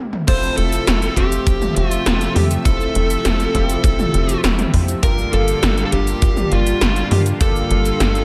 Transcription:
0.13 mid tom medium
0.28 0.50 F1 loud
0.28 4.99 C3 medium
0.28 4.99 F3 medium
0.28 1.13 F3 medium
0.28 4.99 A3 medium
0.28 1.13 C4 medium
0.28 1.13 E4 medium
0.28 1.13 F4 medium
0.28 1.13 A4 medium
0.28 0.55 C5 loud
0.28 4.99 E5 medium
0.28 kick loud
0.28 closed hi-hat medium
0.28 crash loud
0.28 cabasa medium
0.43 cabasa soft
0.57 0.79 F1 medium
0.57 1.16 A4 loud
0.57 1.19 A4 loud
0.57 closed hi-hat medium
0.72 closed hi-hat medium
0.72 cabasa medium
0.87 1.09 F1 medium
0.87 snare loud
0.87 closed hi-hat medium
0.87 cabasa soft
1.02 closed hi-hat soft
1.02 cabasa soft
1.16 1.39 F1 loud
1.16 2.62 F3 medium
1.16 2.62 C4 medium
1.16 2.62 F4 medium
1.16 1.75 G4 loud
1.16 1.76 G4 loud
1.16 2.62 G4 loud
1.16 2.62 E5 medium
1.16 kick medium
1.16 closed hi-hat medium
1.32 closed hi-hat medium
1.32 cabasa medium
1.47 1.69 F1 medium
1.47 kick loud
1.47 closed hi-hat medium
1.47 cabasa soft
1.62 mid tom medium
1.62 cabasa soft
1.76 1.98 F1 medium
1.76 2.31 F4 loud
1.76 2.32 F4 loud
1.76 closed hi-hat medium
1.91 closed hi-hat medium
1.91 cabasa medium
2.06 2.28 F1 medium
2.06 snare loud
2.06 closed hi-hat medium
2.06 cabasa soft
2.21 closed hi-hat soft
2.21 cabasa soft
2.35 2.58 F2 medium
2.35 2.43 G4 medium
2.35 2.49 G4 medium
2.35 open hi-hat medium
2.35 mid tom medium
2.51 closed hi-hat medium
2.51 cabasa medium
2.65 2.87 F1 loud
2.65 3.51 F3 medium
2.65 3.51 C4 medium
2.65 3.51 E4 medium
2.65 3.51 F4 medium
2.65 4.39 A4 loud
2.65 4.39 A4 medium
2.65 3.51 A4 medium
2.65 kick loud
2.65 closed hi-hat medium
2.65 cabasa soft
2.81 cabasa soft
2.95 3.17 F1 loud
2.95 closed hi-hat medium
3.10 closed hi-hat medium
3.10 cabasa medium
3.25 3.47 F1 medium
3.25 snare loud
3.25 closed hi-hat medium
3.25 cabasa soft
3.40 closed hi-hat soft
3.40 cabasa soft
3.55 3.76 F1 loud
3.55 4.99 F3 medium
3.55 5.00 C4 medium
3.55 5.00 E4 medium
3.55 4.99 F4 medium
3.55 5.00 G4 loud
3.55 kick medium
3.55 closed hi-hat medium
3.70 closed hi-hat medium
3.70 cabasa medium
3.84 4.06 F1 medium
3.84 kick loud
3.84 closed hi-hat medium
3.84 cabasa soft
3.99 mid tom medium
3.99 cabasa soft
4.14 4.36 F1 medium
4.14 closed hi-hat medium
4.29 closed hi-hat medium
4.29 cabasa medium
4.44 4.66 F1 medium
4.44 snare loud
4.44 closed hi-hat medium
4.44 cabasa soft
4.59 closed hi-hat soft
4.59 mid tom medium
4.59 cabasa soft
4.74 4.95 F2 medium
4.74 kick medium
4.74 open hi-hat medium
4.88 closed hi-hat medium
4.88 cabasa medium
5.03 5.25 G1 loud
5.03 5.89 G2 medium
5.03 8.24 D3 medium
5.03 8.24 G3 medium
5.03 5.89 A#3 medium
5.03 8.24 A#3 medium
5.03 5.89 D4 medium
5.03 5.89 F4 medium
5.03 8.24 F4 medium
5.03 5.89 G4 medium
5.03 5.31 A#4 loud
5.03 kick loud
5.03 closed hi-hat medium
5.03 cabasa soft
5.18 cabasa soft
5.33 5.55 G1 loud
5.33 5.82 A4 loud
5.33 closed hi-hat medium
5.48 closed hi-hat medium
5.48 cabasa medium
5.63 5.84 G1 medium
5.63 snare loud
5.63 closed hi-hat medium
5.63 cabasa soft
5.78 closed hi-hat soft
5.78 cabasa soft
5.85 5.92 A4 medium
5.92 6.14 G1 medium
5.92 7.37 G2 medium
5.92 7.37 A#3 medium
5.92 7.37 D4 medium
5.92 7.37 F4 medium
5.92 6.51 G4 loud
5.92 7.37 G4 loud
5.92 6.53 G4 loud
5.92 kick medium
5.92 closed hi-hat medium
6.07 closed hi-hat medium
6.07 cabasa medium
6.22 6.44 G1 medium
6.22 kick loud
6.22 closed hi-hat medium
6.22 cabasa soft
6.37 mid tom medium
6.37 cabasa soft
6.52 6.73 G1 medium
6.52 7.07 F4 loud
6.52 closed hi-hat medium
6.67 closed hi-hat medium
6.67 cabasa medium
6.81 7.03 G1 medium
6.81 snare loud
6.81 closed hi-hat medium
6.81 cabasa soft
6.96 closed hi-hat soft
6.96 cabasa soft
7.11 7.33 G2 medium
7.11 7.25 G4 medium
7.11 7.19 G4 medium
7.11 open hi-hat medium
7.11 mid tom loud
7.26 closed hi-hat medium
7.26 cabasa medium
7.41 7.63 G1 loud
7.41 8.24 G2 medium
7.41 8.24 A#3 medium
7.41 8.24 D4 medium
7.41 8.24 F4 medium
7.41 8.24 G4 medium
7.41 8.24 A4 loud
7.41 8.24 A4 medium
7.41 kick loud
7.41 closed hi-hat medium
7.41 cabasa soft
7.56 cabasa soft
7.70 7.92 G1 medium
7.70 closed hi-hat medium
7.85 closed hi-hat medium
7.85 cabasa medium
8.00 8.22 G1 loud
8.00 snare loud
8.00 closed hi-hat medium
8.00 cabasa soft
8.15 closed hi-hat soft
8.15 cabasa soft

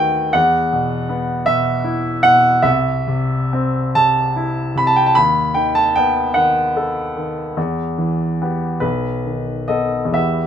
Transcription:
0.00 0.30 D#2 medium
0.00 0.37 D#3 soft
0.00 0.37 A3 medium
0.00 0.20 F#4 soft
0.00 0.37 B4 medium
0.00 0.34 G5 medium
0.33 2.60 E2 medium
0.33 1.48 F#5 medium
0.73 1.34 B2 soft
1.09 1.71 B3 medium
1.46 2.09 B2 medium
1.46 2.23 E5 medium
1.84 2.47 E4 soft
2.23 2.64 B2 medium
2.23 2.63 F#5 medium
2.62 5.10 C2 medium
2.62 3.95 E5 medium
3.08 3.79 C3 soft
3.53 4.21 C4 medium
3.95 4.60 C3 medium
3.95 4.79 A5 medium
4.36 4.99 E4 soft
4.76 5.15 C3 soft
4.76 4.87 B5 medium
4.87 4.96 A5 medium
4.96 5.06 G5 medium
5.06 5.15 A5 medium
5.15 7.54 D#2 medium
5.15 5.55 B5 medium
5.54 6.19 D#3 soft
5.54 5.75 G5 medium
5.75 5.95 A5 medium
5.96 6.60 B3 soft
5.96 6.35 G5 medium
6.34 7.00 D#3 soft
6.34 7.16 F#5 medium
6.77 7.41 A4 soft
7.17 7.57 D#3 soft
7.57 8.79 E2 medium
7.98 8.66 E3 soft
8.42 8.80 B3 soft
8.42 8.80 G4 soft
8.80 10.11 B1 medium
8.80 9.69 B4 medium
9.26 9.97 D#3 soft
9.68 10.11 B3 soft
9.68 10.11 A4 soft
9.68 10.14 D#5 medium
10.05 10.47 E2 soft
10.12 10.47 E3 soft
10.12 10.47 B3 soft
10.12 10.47 G4 soft
10.12 10.47 E5 medium

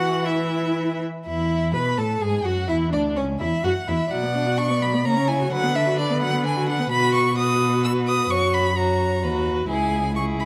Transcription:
0.00 1.03 E3 medium
0.00 0.27 F#4 medium
0.00 0.24 F#5 medium
0.00 0.27 F#5 medium
0.25 1.02 E4 medium
0.25 1.00 E5 medium
0.25 1.02 E5 medium
1.26 1.75 E2 soft
1.26 1.75 E4 soft
1.26 1.71 E4 medium
1.26 1.71 E5 medium
1.74 1.99 B2 medium
1.74 1.99 B4 medium
1.74 2.00 B4 medium
1.74 1.99 B5 medium
1.98 2.21 A2 soft
1.98 2.23 A4 soft
1.98 2.23 A5 soft
2.21 2.44 G#2 medium
2.21 2.44 G#4 medium
2.21 2.46 G#4 soft
2.21 2.46 G#5 medium
2.45 2.70 F#2 soft
2.45 2.53 F#4 soft
2.45 2.70 F#4 medium
2.45 2.68 F#5 medium
2.68 2.94 E2 medium
2.68 2.91 E4 medium
2.68 2.93 E4 medium
2.68 2.76 E5 medium
2.92 3.18 D2 soft
2.92 3.15 D4 medium
2.92 3.18 D4 medium
2.92 3.01 D5 medium
3.16 3.40 C#2 medium
3.16 3.24 C#4 medium
3.16 3.40 C#4 soft
3.16 3.25 C#5 soft
3.40 3.49 E2 soft
3.40 3.48 E4 medium
3.40 3.63 E4 medium
3.40 3.66 E5 medium
3.64 3.72 F#2 medium
3.64 3.72 F#4 medium
3.64 3.89 F#5 medium
3.87 3.96 E2 medium
3.87 4.10 E4 soft
3.87 3.96 E4 soft
3.87 4.13 E5 medium
4.11 5.07 B2 soft
4.11 4.24 F#3 soft
4.11 5.07 D5 soft
4.11 4.60 F#5 medium
4.23 4.36 B3 soft
4.35 4.48 D4 soft
4.46 4.59 F#4 soft
4.58 4.71 D4 soft
4.58 4.84 C#6 medium
4.69 4.83 B3 soft
4.81 4.95 F#3 medium
4.81 5.07 B5 medium
4.93 5.04 B3 soft
5.05 5.51 C#3 medium
5.05 5.18 A#3 medium
5.05 5.53 C#5 medium
5.05 5.30 A#5 medium
5.16 5.29 C#4 soft
5.28 5.41 E4 soft
5.28 5.52 G#5 medium
5.39 5.51 F#4 soft
5.51 6.89 D3 medium
5.51 5.65 F#3 medium
5.51 6.91 B4 medium
5.51 5.77 F#5 medium
5.63 5.76 B3 soft
5.75 5.88 D4 medium
5.75 5.98 E5 medium
5.86 5.99 F#4 soft
5.98 6.12 D4 soft
5.98 6.21 D5 medium
6.10 6.23 B3 soft
6.21 6.34 F#3 soft
6.21 6.45 F#5 medium
6.33 6.46 B3 medium
6.44 6.58 D4 medium
6.44 6.68 G#5 medium
6.56 6.69 F#4 soft
6.67 6.80 D4 soft
6.67 6.91 F#5 medium
6.79 6.90 B3 soft
6.90 8.26 B2 medium
6.90 7.34 F#4 medium
6.90 7.35 B4 medium
6.90 7.14 B5 loud
7.14 7.37 C#6 medium
7.37 8.28 F#4 medium
7.37 8.32 B4 medium
7.37 7.83 D#6 medium
7.84 7.92 E6 medium
8.08 8.32 D#6 medium
8.29 9.24 F#2 medium
8.29 8.75 F#4 medium
8.29 8.76 C#5 medium
8.29 8.55 C#6 medium
8.54 8.78 B5 medium
8.76 9.21 F#4 soft
8.76 9.24 C#5 soft
8.76 9.46 A#5 medium
9.22 9.68 D#2 medium
9.22 9.67 F#4 medium
9.22 9.69 B4 medium
9.68 10.45 C#2 medium
9.68 10.12 E4 medium
9.68 10.13 G#4 soft
9.68 10.12 G#5 medium
10.15 10.45 E4 soft
10.15 10.45 G#4 soft
10.15 10.24 C#6 medium
10.40 10.45 B5 medium

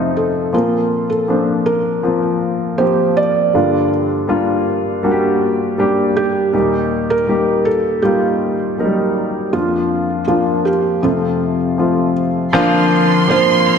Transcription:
0.00 0.49 F2 medium
0.00 0.49 C3 medium
0.00 0.53 F3 medium
0.00 0.55 A3 medium
0.00 0.54 C4 medium
0.00 0.50 D#4 medium
0.00 0.54 F4 medium
0.17 0.55 A4 medium
0.53 3.49 A#2 soft
0.53 1.24 F3 medium
0.53 1.24 A#3 soft
0.53 1.25 C4 soft
0.53 1.25 F4 medium
0.53 1.06 A#4 medium
1.10 1.62 A4 medium
1.28 1.99 F3 medium
1.28 2.00 A#3 soft
1.28 2.00 C4 soft
1.28 2.00 D4 medium
1.66 2.82 A#4 medium
2.03 2.74 F3 medium
2.03 2.75 A#3 soft
2.03 2.75 C4 soft
2.03 2.75 F4 medium
2.78 3.49 F3 medium
2.78 3.50 A#3 soft
2.78 3.50 C4 soft
2.78 3.50 G4 medium
2.78 3.17 C5 medium
3.17 3.87 D5 medium
3.54 6.50 G2 soft
3.54 6.50 D3 soft
3.54 4.25 G3 medium
3.54 4.25 A#3 soft
3.54 4.25 D4 medium
3.54 4.25 F4 medium
4.27 4.99 G3 medium
4.27 5.00 A#3 medium
4.27 5.00 D4 medium
4.27 5.00 F4 medium
5.03 5.74 G3 medium
5.03 5.75 A#3 medium
5.03 5.75 D4 medium
5.03 5.10 F#4 medium
5.11 5.78 G4 medium
5.78 6.49 G3 medium
5.78 6.50 A#3 medium
5.78 6.50 D4 medium
5.78 6.50 G4 medium
6.17 7.13 G4 medium
6.53 9.49 D#2 soft
6.53 9.49 A#2 soft
6.53 7.24 G3 medium
6.53 7.25 A#3 soft
6.53 7.25 D#4 medium
6.53 7.25 G4 medium
7.10 7.68 A#4 medium
7.27 7.99 G3 soft
7.27 7.99 A#3 soft
7.27 8.00 D#4 soft
7.27 8.00 G4 medium
7.65 8.00 A4 medium
8.02 8.74 G3 medium
8.02 8.75 A#3 soft
8.02 8.75 D#4 medium
8.02 8.75 F4 medium
8.02 9.49 G4 medium
8.78 8.85 F#3 soft
8.78 9.50 A#3 soft
8.78 9.50 D#4 soft
8.78 9.50 A#4 medium
8.84 9.53 G3 medium
9.53 11.00 F2 soft
9.53 10.24 F3 medium
9.53 10.25 A#3 soft
9.53 10.25 D4 soft
9.53 10.24 F4 medium
9.53 10.25 F4 medium
10.27 10.99 F3 medium
10.27 10.99 A#3 soft
10.27 11.00 D4 soft
10.27 10.67 F4 medium
10.27 11.00 F4 medium
10.65 11.00 G4 medium
11.02 12.49 F2 soft
11.02 12.49 C3 soft
11.02 11.74 F3 medium
11.02 11.75 A3 soft
11.02 11.75 C4 soft
11.02 11.75 F4 medium
11.02 12.12 A4 medium
11.78 12.49 F3 soft
11.78 12.50 A3 soft
11.78 12.50 C4 soft
11.78 12.50 F4 medium
12.53 13.28 A#2 medium
12.53 13.78 A#2 medium
12.53 13.33 D3 medium
12.53 13.24 F3 loud
12.53 13.28 F3 loud
12.53 13.25 A#3 loud
12.53 13.28 A#3 medium
12.53 13.25 C4 loud
12.53 13.30 C4 medium
12.53 13.25 D4 medium
12.53 13.25 F4 loud
12.53 13.31 F4 medium
12.53 13.78 C6 loud
13.28 13.78 F3 medium
13.28 13.66 F3 medium
13.28 13.78 A#3 medium
13.28 13.66 A#3 medium
13.28 13.78 C4 medium
13.28 13.65 C4 medium
13.28 13.78 D4 medium
13.28 13.78 F4 medium
13.28 13.64 F4 medium
13.28 13.78 C5 medium
13.66 13.78 F3 soft
13.66 13.78 A#3 soft
13.66 13.78 C4 soft
13.66 13.78 F4 soft

